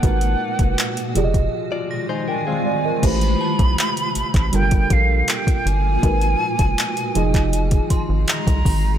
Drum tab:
CC |----------------|x---------------|----------------|
HH |xx-xxxxx--------|xx-xxxxxxxx-xxx-|xx-xxxxxxxx-xxo-|
CP |----x-----------|----x--x----x---|----x--x----x---|
BD |o--o---o--------|o--o---o-oo--o--|o--o---o-oo--oo-|